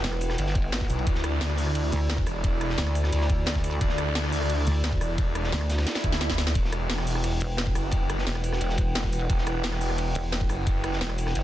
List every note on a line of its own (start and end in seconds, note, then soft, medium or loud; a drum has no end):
0.00 0.37 E1 loud
0.00 6.51 E4 medium
0.00 1.03 B4 medium
0.00 1.03 F#5 medium
0.00 1.03 G5 medium
0.00 snare loud
0.00 closed hi-hat medium
0.00 ride medium
0.05 snare loud
0.13 cross-stick soft
0.21 open hi-hat medium
0.21 ride medium
0.29 cross-stick soft
0.29 snare medium
0.38 0.88 G1 loud
0.38 closed hi-hat medium
0.38 ride loud
0.46 snare soft
0.55 kick loud
0.55 closed hi-hat medium
0.55 ride medium
0.72 snare loud
0.72 closed hi-hat medium
0.72 ride medium
0.81 kick medium
0.81 snare medium
0.90 1.05 B1 loud
0.90 open hi-hat medium
0.90 ride medium
0.99 ride soft
1.07 1.91 D2 loud
1.07 6.51 A4 medium
1.07 6.51 D5 medium
1.07 kick loud
1.07 closed hi-hat medium
1.07 ride medium
1.15 snare medium
1.24 cross-stick medium
1.24 closed hi-hat medium
1.24 ride medium
1.41 snare loud
1.41 closed hi-hat medium
1.41 ride medium
1.49 cross-stick soft
1.49 snare medium
1.57 open hi-hat medium
1.67 cross-stick soft
1.75 closed hi-hat medium
1.75 ride loud
1.92 2.25 D2 loud
1.92 closed hi-hat medium
1.92 ride medium
2.10 snare loud
2.10 closed hi-hat medium
2.10 ride loud
2.18 kick loud
2.26 2.77 E1 loud
2.26 cross-stick medium
2.26 open hi-hat medium
2.26 ride medium
2.44 kick loud
2.44 closed hi-hat medium
2.44 ride medium
2.61 cross-stick medium
2.61 closed hi-hat medium
2.61 ride medium
2.69 snare soft
2.78 3.11 D2 loud
2.78 snare loud
2.78 closed hi-hat medium
2.78 ride medium
2.87 cross-stick soft
2.95 open hi-hat medium
2.95 ride medium
3.04 cross-stick soft
3.04 snare medium
3.12 3.45 D2 loud
3.12 closed hi-hat medium
3.12 ride medium
3.21 snare soft
3.30 kick loud
3.30 closed hi-hat medium
3.30 ride medium
3.46 3.80 D2 loud
3.46 snare loud
3.46 closed hi-hat medium
3.46 ride medium
3.55 kick medium
3.55 snare soft
3.64 open hi-hat medium
3.64 ride medium
3.72 ride soft
3.81 4.65 D2 loud
3.81 kick loud
3.81 closed hi-hat loud
3.81 ride medium
3.89 snare medium
3.98 cross-stick medium
3.98 closed hi-hat medium
3.98 ride medium
4.15 snare loud
4.15 closed hi-hat loud
4.15 ride loud
4.24 cross-stick soft
4.24 snare medium
4.32 open hi-hat medium
4.41 cross-stick soft
4.50 closed hi-hat medium
4.50 ride medium
4.67 5.00 D2 loud
4.67 closed hi-hat medium
4.67 ride medium
4.84 snare loud
4.84 closed hi-hat loud
4.84 ride medium
4.93 kick loud
5.01 5.51 E1 loud
5.01 cross-stick medium
5.01 open hi-hat medium
5.01 ride medium
5.18 kick loud
5.18 closed hi-hat loud
5.18 ride medium
5.35 cross-stick medium
5.35 closed hi-hat medium
5.35 ride medium
5.44 snare soft
5.52 5.85 D2 medium
5.52 snare loud
5.52 closed hi-hat loud
5.52 ride loud
5.61 cross-stick soft
5.70 snare loud
5.70 open hi-hat medium
5.70 ride medium
5.78 cross-stick soft
5.78 snare loud
5.78 ride medium
5.86 snare loud
5.86 snare medium
5.86 closed hi-hat loud
5.86 ride medium
5.86 swell medium
5.95 snare loud
5.95 snare medium
5.95 ride medium
6.04 6.54 D2 loud
6.04 kick loud
6.04 closed hi-hat medium
6.04 ride medium
6.12 snare medium
6.21 snare medium
6.21 closed hi-hat loud
6.21 ride medium
6.30 kick medium
6.30 snare medium
6.30 ride medium
6.38 snare medium
6.38 snare loud
6.38 open hi-hat medium
6.47 snare medium
6.47 ride medium
6.55 7.40 E1 loud
6.55 11.43 E4 medium
6.55 11.43 B4 medium
6.55 11.43 F#5 medium
6.55 11.43 G5 medium
6.55 kick loud
6.55 closed hi-hat loud
6.55 ride loud
6.65 snare medium
6.72 cross-stick medium
6.72 closed hi-hat medium
6.72 ride medium
6.89 snare loud
6.89 closed hi-hat loud
6.89 ride medium
6.98 cross-stick medium
6.98 snare medium
7.07 open hi-hat medium
7.15 cross-stick soft
7.24 closed hi-hat loud
7.24 ride medium
7.40 7.74 E1 loud
7.40 closed hi-hat medium
7.40 ride medium
7.57 snare loud
7.57 closed hi-hat loud
7.57 ride medium
7.67 kick loud
7.75 8.25 F#1 loud
7.75 cross-stick medium
7.75 open hi-hat medium
7.75 ride medium
7.91 kick loud
7.91 closed hi-hat loud
7.91 ride medium
8.10 cross-stick medium
8.10 closed hi-hat medium
8.10 ride medium
8.18 snare soft
8.27 8.60 E1 loud
8.27 snare loud
8.27 closed hi-hat loud
8.27 ride medium
8.35 cross-stick medium
8.44 open hi-hat medium
8.44 ride medium
8.53 cross-stick soft
8.53 snare medium
8.61 8.94 E1 loud
8.61 closed hi-hat loud
8.61 ride medium
8.69 snare soft
8.78 kick loud
8.78 closed hi-hat medium
8.78 ride medium
8.95 9.28 E1 loud
8.95 snare loud
8.95 closed hi-hat loud
8.95 ride medium
9.03 kick medium
9.03 snare medium
9.12 open hi-hat medium
9.12 ride medium
9.21 ride soft
9.30 10.14 E1 loud
9.30 kick loud
9.30 closed hi-hat medium
9.30 ride medium
9.38 snare medium
9.46 cross-stick medium
9.46 closed hi-hat medium
9.46 ride medium
9.63 snare loud
9.63 closed hi-hat medium
9.63 ride medium
9.73 cross-stick soft
9.73 snare medium
9.81 open hi-hat medium
9.90 cross-stick soft
9.98 closed hi-hat medium
9.98 ride medium
10.15 10.48 E1 loud
10.15 closed hi-hat medium
10.15 ride medium
10.32 snare loud
10.32 closed hi-hat medium
10.32 ride medium
10.41 kick loud
10.49 11.00 F#1 loud
10.49 cross-stick medium
10.49 open hi-hat medium
10.49 ride medium
10.67 kick loud
10.67 closed hi-hat medium
10.67 ride medium
10.84 cross-stick medium
10.84 closed hi-hat medium
10.84 ride medium
10.93 snare soft
11.01 11.34 E1 loud
11.01 snare loud
11.01 closed hi-hat medium
11.01 ride medium
11.10 cross-stick soft
11.18 open hi-hat medium
11.18 ride medium
11.26 cross-stick soft
11.26 snare medium
11.35 11.43 G1 loud
11.35 closed hi-hat medium
11.35 ride medium